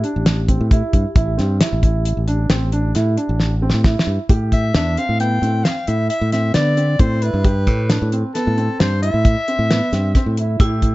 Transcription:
Already playing: G4
0.03 D4, closed hi-hat
0.16 A1
0.26 snare, closed hi-hat
0.48 C4, kick, closed hi-hat
0.61 A2
0.71 E4, kick, closed hi-hat
0.93 G2, kick, closed hi-hat
1.15 A1 E4, kick, closed hi-hat
1.38 G2 C4, snare, closed hi-hat
1.60 E4, snare, closed hi-hat
1.73 A1
1.83 E4, kick, closed hi-hat
2.05 closed hi-hat
2.17 A1
2.28 D4, closed hi-hat
2.50 A1 C4, snare, closed hi-hat
2.72 D4, closed hi-hat
2.95 A2 E4, snare, closed hi-hat
3.17 D4, closed hi-hat
3.29 A1
3.40 snare
3.62 C4
3.70 snare
3.74 A2
3.84 E4, kick, snare
3.99 snare
4.07 G2
4.29 A2 G4, kick, closed hi-hat
4.52 E5, kick, closed hi-hat
4.75 E2 D4 E5, snare, closed hi-hat
4.97 C4 F5, closed hi-hat
5.09 A2
5.20 B3 G5, closed hi-hat
5.42 A2 C4, closed hi-hat
5.64 F5, snare, closed hi-hat
5.87 A2 E4 E5, closed hi-hat
6.10 E5, closed hi-hat
6.21 A2
6.32 C4 E5, snare, closed hi-hat
6.54 D3 B3 D5, snare, closed hi-hat
6.77 C4, closed hi-hat
6.99 A2 C4 C5, kick, closed hi-hat
7.22 E4 B4, closed hi-hat
7.34 G2
7.44 G4, kick, closed hi-hat
7.67 A2, kick, closed hi-hat
7.89 D4, snare, closed hi-hat
8.02 A2
8.12 C4, closed hi-hat
8.34 B3 A4, snare, closed hi-hat
8.47 A2
8.57 C4, closed hi-hat
8.80 G2 C5, snare, closed hi-hat
9.02 E4 E5, closed hi-hat
9.14 A2
9.25 kick, closed hi-hat
9.48 C4, closed hi-hat
9.59 A2
9.70 B3, snare, closed hi-hat
9.93 G2 C4, snare, closed hi-hat
10.15 C4, kick, snare, closed hi-hat
10.26 A2
10.37 E4, closed hi-hat
10.60 A2 E4 G4, kick, closed hi-hat
10.82 kick, closed hi-hat

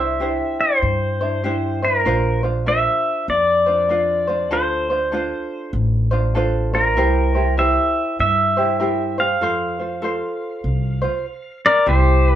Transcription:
Already playing: C2 C5 E5
0.00 D4 E4
0.20 D4 E4 G4 C5
0.61 C5
0.82 G2
1.21 D4 E4 C5
1.44 D4 E4 G4 C5
1.82 D4 E4 A#4 C5
2.05 A#1 D4 F4 A#4 C5
2.43 D4 F4 C5
2.66 D4 F4 A#4 C5 E5
3.28 F2 D5
3.66 D4 F4 C5
3.89 D4 F4 A#4 C5
4.27 D4 F4 C5
4.51 D2 D4 F4 A4 C5
4.90 D4 F4 C5
5.12 D4 F4 A4 C5
5.73 A1
6.11 D4 F4 C5
6.35 D4 F4 A4 C5
6.74 D4 F4 A#4 C5
6.97 C2 E4 G4 A#4 C5
7.35 E4 G4 C5
7.57 E4 G4 A#4 C5 E5
8.19 G2 E5
8.57 E4 G4 C5
8.80 E4 G4 A#4 C5
9.18 G4 C5 F5
9.41 F2 F4 A4 C5
9.79 F4 C5
10.02 F4 A4 C5
10.64 C2
11.02 F4 C5
11.66 A#4 D5
11.86 C2 C4 E4 G4 C5
12.29 B4

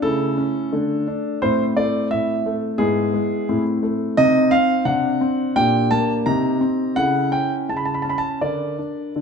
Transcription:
0.02 C#3 A3 E4 A4
0.38 C#4
0.73 D3 A3 D4
1.08 D4
1.42 A2 C4 E4 C5
1.77 A3 D5
2.11 A2 E5
2.46 A3
2.78 G#2 B3 E4 G#4
3.14 G#3
3.49 A2 C4 E4
3.83 A3
4.17 C3 C4 D#4 D#5
4.51 C4 F5
4.85 C3 D4 F#5
5.21 C4
5.56 A#2 D4 G4 G5
5.91 A#3 A5
6.26 C3 D#4 G4 A#5
6.61 C4
6.96 C#3 E4 A4 F#5
7.32 C#4 G5
7.69 C#3 A5
7.77 B5
7.85 A5
7.94 B5
8.02 C#4 A5
8.10 B5
8.18 A5
8.41 D3 D4 A#4 D5
8.79 D4
9.16 D3 D4 A4

